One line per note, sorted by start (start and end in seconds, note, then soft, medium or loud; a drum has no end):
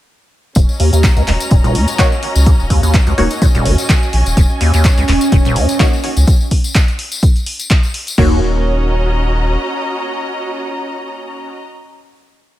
0.55 0.66 D#1 medium
0.55 0.60 D#2 medium
0.55 6.27 C#4 medium
0.55 kick loud
0.55 closed hi-hat medium
0.55 tambourine medium
0.69 6.27 D#5 medium
0.69 tambourine soft
0.75 6.27 F#4 medium
0.75 3.57 A#5 medium
0.80 0.90 D#2 medium
0.80 open hi-hat loud
0.93 1.05 D#2 medium
0.93 closed hi-hat medium
0.93 tambourine medium
1.03 1.08 C#2 medium
1.03 kick loud
1.03 clap loud
1.03 closed hi-hat medium
1.03 tambourine medium
1.16 1.22 C#2 medium
1.16 closed hi-hat soft
1.16 tambourine soft
1.27 1.37 D#1 medium
1.27 1.32 C#2 medium
1.27 clap medium
1.27 open hi-hat medium
1.40 closed hi-hat medium
1.40 tambourine medium
1.51 1.61 D#1 medium
1.51 1.55 A#2 medium
1.51 kick loud
1.51 closed hi-hat medium
1.51 tambourine medium
1.64 1.76 D#1 loud
1.64 closed hi-hat soft
1.64 tambourine soft
1.75 1.86 D#2 medium
1.75 open hi-hat loud
1.88 closed hi-hat medium
1.88 tambourine medium
1.99 2.03 D#3 medium
1.99 2.05 A#3 medium
1.99 2.05 D#4 medium
1.99 2.05 F#4 medium
1.99 2.05 C#5 loud
1.99 kick loud
1.99 clap loud
1.99 closed hi-hat medium
1.99 tambourine medium
2.12 tambourine soft
2.23 open hi-hat medium
2.35 2.53 C#2 medium
2.35 closed hi-hat medium
2.35 tambourine medium
2.46 2.51 D#2 medium
2.46 kick loud
2.46 closed hi-hat medium
2.46 tambourine medium
2.59 2.67 D#1 medium
2.59 tambourine soft
2.70 2.81 D#2 medium
2.70 kick medium
2.70 open hi-hat loud
2.83 2.96 D#2 medium
2.83 closed hi-hat medium
2.83 tambourine medium
2.94 2.98 C#2 medium
2.94 kick loud
2.94 clap loud
2.94 closed hi-hat medium
2.94 tambourine medium
3.07 3.13 C#2 medium
3.07 closed hi-hat soft
3.07 tambourine soft
3.18 3.27 D#1 medium
3.18 3.22 C#2 medium
3.18 3.24 A#3 medium
3.18 3.24 D#4 medium
3.18 3.24 F#4 medium
3.18 3.24 C#5 medium
3.18 open hi-hat medium
3.31 closed hi-hat soft
3.31 tambourine medium
3.42 3.46 A#2 medium
3.42 6.27 G#5 medium
3.42 kick loud
3.42 closed hi-hat medium
3.42 tambourine medium
3.55 3.63 D#1 medium
3.55 3.67 D#1 loud
3.55 closed hi-hat soft
3.55 tambourine soft
3.65 3.75 F#1 medium
3.65 3.76 D#2 medium
3.65 open hi-hat loud
3.78 closed hi-hat medium
3.78 tambourine medium
3.89 3.94 D#3 medium
3.89 kick loud
3.89 clap loud
3.89 closed hi-hat medium
3.89 tambourine medium
4.03 tambourine soft
4.13 4.23 A#1 loud
4.13 open hi-hat medium
4.26 4.34 D#1 medium
4.26 closed hi-hat soft
4.26 tambourine medium
4.37 4.47 D#1 medium
4.37 4.41 D#2 medium
4.37 6.28 C#4 medium
4.37 6.28 C#5 medium
4.37 kick loud
4.37 closed hi-hat medium
4.37 tambourine medium
4.50 tambourine soft
4.61 4.71 D#2 medium
4.61 open hi-hat loud
4.74 4.86 D#2 medium
4.74 closed hi-hat medium
4.74 tambourine medium
4.84 4.89 C#2 medium
4.84 kick loud
4.84 clap loud
4.84 closed hi-hat medium
4.84 tambourine medium
4.98 5.03 C#2 medium
4.98 closed hi-hat soft
4.98 tambourine soft
5.08 5.18 D#1 medium
5.08 5.13 C#2 medium
5.08 clap medium
5.08 open hi-hat medium
5.21 closed hi-hat soft
5.21 tambourine medium
5.32 5.42 D#1 loud
5.32 5.36 A#2 medium
5.32 kick loud
5.32 closed hi-hat medium
5.32 tambourine medium
5.45 5.57 D#1 loud
5.45 closed hi-hat soft
5.45 tambourine soft
5.56 5.67 D#2 medium
5.56 open hi-hat loud
5.69 closed hi-hat medium
5.69 tambourine medium
5.80 5.84 D#3 medium
5.80 5.86 A#3 medium
5.80 5.86 D#4 medium
5.80 5.86 F#4 medium
5.80 5.86 C#5 loud
5.80 kick loud
5.80 clap loud
5.80 closed hi-hat medium
5.80 tambourine medium
5.93 tambourine soft
6.04 open hi-hat medium
6.17 6.25 C#2 medium
6.17 closed hi-hat soft
6.17 tambourine medium
6.27 kick loud
6.27 closed hi-hat medium
6.27 tambourine medium
6.41 tambourine soft
6.51 kick medium
6.51 open hi-hat loud
6.64 closed hi-hat soft
6.64 tambourine medium
6.75 kick loud
6.75 clap loud
6.75 closed hi-hat medium
6.75 tambourine medium
6.88 closed hi-hat soft
6.88 tambourine soft
6.99 open hi-hat medium
7.12 closed hi-hat soft
7.12 tambourine medium
7.23 kick loud
7.23 closed hi-hat medium
7.23 tambourine medium
7.36 closed hi-hat soft
7.36 tambourine soft
7.46 open hi-hat loud
7.59 closed hi-hat soft
7.59 tambourine medium
7.70 kick loud
7.70 clap loud
7.70 closed hi-hat medium
7.70 tambourine medium
7.83 tambourine soft
7.94 open hi-hat loud
8.07 closed hi-hat medium
8.07 tambourine medium
8.18 9.57 D#1 medium
8.18 8.40 D#2 medium
8.18 11.47 A#3 medium
8.18 11.47 C#4 medium
8.18 11.47 D#4 medium
8.18 11.47 F#4 medium
8.18 11.47 C#5 loud
8.18 kick loud
8.18 crash medium
8.26 11.55 F#4 medium
8.33 11.62 D#5 medium
8.40 11.69 A#5 medium